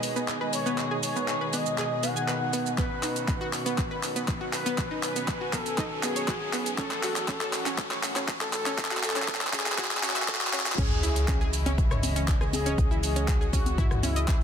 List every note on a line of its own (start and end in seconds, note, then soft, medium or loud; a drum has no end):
0.00 6.74 B2 medium
0.00 6.74 D#3 medium
0.00 2.74 G#3 medium
0.00 2.74 G#4 medium
0.00 2.74 D#5 medium
0.00 open hi-hat loud
0.00 riser medium
0.00 shaker medium
0.16 0.24 B3 medium
0.16 shaker soft
0.28 clap medium
0.28 shaker soft
0.41 0.44 B4 medium
0.53 0.98 C#5 medium
0.53 open hi-hat loud
0.53 shaker medium
0.66 0.74 B3 loud
0.66 shaker soft
0.78 clap medium
0.78 shaker soft
0.91 0.99 G#4 medium
1.03 1.55 C#5 medium
1.03 open hi-hat loud
1.03 shaker medium
1.16 1.22 B3 medium
1.16 shaker soft
1.28 clap medium
1.28 shaker soft
1.41 1.47 B4 medium
1.53 1.59 B3 medium
1.53 2.05 D#5 medium
1.53 open hi-hat loud
1.53 shaker medium
1.66 shaker soft
1.78 1.84 G#4 loud
1.78 clap medium
1.78 shaker soft
2.03 2.09 B3 medium
2.03 2.69 F#5 loud
2.03 open hi-hat loud
2.03 shaker medium
2.16 2.19 G#5 medium
2.16 shaker soft
2.28 2.32 B4 medium
2.28 clap medium
2.28 shaker soft
2.53 2.59 B3 medium
2.53 open hi-hat medium
2.53 shaker medium
2.66 shaker soft
2.78 10.74 F#3 medium
2.78 2.84 B3 loud
2.78 10.74 C#4 medium
2.78 4.76 F#4 medium
2.78 3.43 B4 loud
2.78 kick loud
2.78 clap medium
2.78 closed hi-hat medium
2.78 shaker soft
3.03 3.12 D#4 medium
3.03 clap medium
3.03 open hi-hat loud
3.03 shaker medium
3.16 closed hi-hat medium
3.16 shaker soft
3.28 3.34 B3 medium
3.28 kick loud
3.28 clap medium
3.28 closed hi-hat medium
3.28 shaker soft
3.41 3.49 F#4 loud
3.53 clap medium
3.53 open hi-hat medium
3.53 shaker medium
3.66 3.69 B3 loud
3.66 closed hi-hat medium
3.66 shaker soft
3.78 kick loud
3.78 clap medium
3.78 closed hi-hat medium
3.78 shaker soft
3.91 3.99 B4 medium
4.03 clap medium
4.03 open hi-hat loud
4.03 shaker medium
4.16 4.24 B3 medium
4.16 closed hi-hat medium
4.16 shaker soft
4.28 kick loud
4.28 clap medium
4.28 closed hi-hat medium
4.28 shaker soft
4.41 4.44 F#4 medium
4.53 4.98 B4 medium
4.53 clap medium
4.53 open hi-hat medium
4.53 shaker medium
4.66 4.74 B3 loud
4.66 closed hi-hat medium
4.66 shaker soft
4.78 6.76 G#5 medium
4.78 kick loud
4.78 clap medium
4.78 closed hi-hat medium
4.78 shaker soft
4.91 4.99 D#4 medium
5.03 5.55 B4 medium
5.03 clap medium
5.03 open hi-hat loud
5.03 shaker medium
5.16 5.22 B3 medium
5.16 closed hi-hat medium
5.16 shaker soft
5.28 kick loud
5.28 clap medium
5.28 closed hi-hat medium
5.28 shaker soft
5.41 5.47 F#4 medium
5.53 5.59 B3 medium
5.53 5.98 A4 medium
5.53 kick medium
5.53 clap medium
5.53 open hi-hat medium
5.53 shaker medium
5.66 closed hi-hat medium
5.66 shaker soft
5.78 5.84 D#4 loud
5.78 kick loud
5.78 clap medium
5.78 closed hi-hat medium
5.78 shaker soft
6.03 6.09 B3 medium
6.03 6.68 G#4 loud
6.03 clap medium
6.03 open hi-hat loud
6.03 shaker medium
6.16 6.19 C#5 medium
6.16 closed hi-hat medium
6.16 shaker soft
6.28 6.32 F#4 medium
6.28 kick loud
6.28 clap medium
6.28 closed hi-hat medium
6.28 shaker soft
6.53 6.59 B3 medium
6.53 clap medium
6.53 open hi-hat medium
6.53 shaker medium
6.66 closed hi-hat medium
6.66 shaker soft
6.78 10.74 A2 medium
6.78 10.74 E3 medium
6.78 6.84 C#4 loud
6.78 8.76 F#4 medium
6.78 7.43 A4 loud
6.78 kick loud
6.78 clap medium
6.78 closed hi-hat medium
6.78 shaker soft
6.91 clap medium
7.03 7.12 F#4 medium
7.03 clap medium
7.03 open hi-hat loud
7.03 shaker medium
7.16 clap medium
7.16 closed hi-hat medium
7.16 shaker soft
7.28 7.34 C#4 medium
7.28 kick loud
7.28 clap loud
7.28 closed hi-hat medium
7.28 shaker soft
7.41 7.49 A4 loud
7.41 clap medium
7.53 clap loud
7.53 open hi-hat medium
7.53 shaker medium
7.66 7.69 C#4 loud
7.66 clap medium
7.66 closed hi-hat medium
7.66 shaker soft
7.78 kick loud
7.78 clap loud
7.78 closed hi-hat medium
7.78 shaker soft
7.91 7.99 C#5 medium
7.91 clap medium
8.03 clap loud
8.03 open hi-hat loud
8.03 shaker medium
8.16 8.24 C#4 medium
8.16 clap medium
8.16 closed hi-hat medium
8.16 shaker soft
8.28 kick loud
8.28 clap loud
8.28 closed hi-hat medium
8.28 shaker soft
8.41 8.44 A4 medium
8.41 clap medium
8.53 8.98 A4 medium
8.53 clap loud
8.53 open hi-hat medium
8.53 shaker medium
8.66 8.74 C#4 loud
8.66 clap medium
8.66 closed hi-hat medium
8.66 shaker soft
8.78 10.76 G#5 medium
8.78 kick loud
8.78 clap loud
8.78 closed hi-hat medium
8.78 shaker soft
8.85 clap loud
8.91 8.99 F#4 medium
8.91 clap medium
8.97 clap medium
9.03 9.48 A4 medium
9.03 clap loud
9.03 open hi-hat loud
9.03 shaker medium
9.10 clap medium
9.16 9.22 C#4 medium
9.16 clap medium
9.16 closed hi-hat medium
9.16 shaker soft
9.22 clap medium
9.28 kick loud
9.28 clap loud
9.28 closed hi-hat medium
9.28 shaker soft
9.35 clap medium
9.41 9.47 A4 medium
9.41 clap medium
9.47 clap medium
9.53 9.59 C#4 medium
9.53 9.98 G#4 medium
9.53 kick medium
9.53 clap loud
9.53 open hi-hat loud
9.53 shaker medium
9.60 clap loud
9.66 clap medium
9.66 closed hi-hat medium
9.66 shaker soft
9.72 clap medium
9.78 9.84 F#4 loud
9.78 kick loud
9.78 clap loud
9.78 closed hi-hat medium
9.78 shaker soft
9.85 clap loud
9.91 clap loud
9.97 clap medium
10.03 10.09 C#4 medium
10.03 10.68 F#4 loud
10.03 clap loud
10.03 open hi-hat loud
10.03 shaker medium
10.10 clap loud
10.16 10.19 E5 medium
10.16 clap loud
10.16 closed hi-hat medium
10.16 shaker soft
10.22 clap medium
10.28 10.32 A4 medium
10.28 kick loud
10.28 clap loud
10.28 closed hi-hat medium
10.28 shaker soft
10.35 clap medium
10.41 clap medium
10.47 clap medium
10.53 10.59 C#4 medium
10.53 clap loud
10.53 open hi-hat medium
10.53 shaker medium
10.60 clap medium
10.66 clap loud
10.66 closed hi-hat medium
10.66 shaker soft
10.72 clap loud
10.78 12.76 C#2 medium
10.78 14.43 C#3 medium
10.78 14.43 E3 medium
10.78 14.43 G#3 medium
10.78 10.84 C#4 loud
10.78 12.76 E4 medium
10.78 11.43 G#4 loud
10.78 14.43 D#5 medium
10.78 kick loud
10.78 closed hi-hat medium
10.78 crash loud
10.78 sub drop medium
10.78 shaker soft
10.91 shaker soft
11.03 11.12 E4 medium
11.03 open hi-hat loud
11.03 shaker medium
11.16 closed hi-hat medium
11.16 shaker soft
11.28 11.34 C#4 medium
11.28 kick loud
11.28 clap loud
11.28 closed hi-hat medium
11.28 shaker soft
11.41 11.49 G#4 loud
11.41 shaker soft
11.53 open hi-hat loud
11.53 shaker medium
11.66 11.69 C#4 loud
11.66 closed hi-hat medium
11.66 high conga loud
11.66 shaker soft
11.78 kick loud
11.78 closed hi-hat medium
11.78 shaker soft
11.91 11.99 C#5 medium
11.91 cross-stick medium
11.91 mid tom medium
11.91 shaker soft
12.03 open hi-hat loud
12.03 high conga medium
12.03 shaker medium
12.16 12.24 C#4 medium
12.16 closed hi-hat medium
12.16 shaker soft
12.28 kick loud
12.28 clap loud
12.28 closed hi-hat medium
12.28 shaker soft
12.41 12.44 G#4 medium
12.41 cross-stick medium
12.41 shaker soft
12.53 12.98 G#4 medium
12.53 open hi-hat medium
12.53 high conga loud
12.53 shaker medium
12.66 12.74 C#4 loud
12.66 closed hi-hat medium
12.66 shaker soft
12.78 14.43 C#2 medium
12.78 14.43 F#4 medium
12.78 kick loud
12.78 closed hi-hat medium
12.78 shaker soft
12.91 12.99 E4 medium
12.91 shaker soft
13.03 13.48 G#4 medium
13.03 open hi-hat loud
13.03 shaker medium
13.16 13.22 C#4 medium
13.16 closed hi-hat medium
13.16 shaker soft
13.28 kick loud
13.28 clap loud
13.28 closed hi-hat medium
13.28 shaker soft
13.41 13.47 G#4 medium
13.41 shaker soft
13.53 13.59 C#4 medium
13.53 13.98 F#4 medium
13.53 kick medium
13.53 open hi-hat loud
13.53 shaker medium
13.66 closed hi-hat medium
13.66 high conga medium
13.66 shaker soft
13.78 13.84 E4 loud
13.78 kick loud
13.78 closed hi-hat medium
13.78 mid tom loud
13.78 shaker soft
13.91 cross-stick medium
13.91 mid tom medium
13.91 shaker soft
14.03 14.09 C#4 medium
14.03 14.43 E4 loud
14.03 open hi-hat loud
14.03 high conga medium
14.03 shaker medium
14.16 14.19 D#5 medium
14.16 closed hi-hat medium
14.16 shaker soft
14.28 14.32 G#4 medium
14.28 kick loud
14.28 clap loud
14.28 closed hi-hat medium
14.28 shaker soft